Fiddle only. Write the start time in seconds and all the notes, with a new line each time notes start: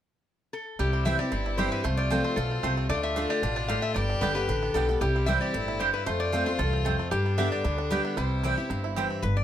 0.80 E4
1.84 F4
2.90 F4
3.97 G4
5.02 E4
6.07 F4
7.12 D4
8.17 E4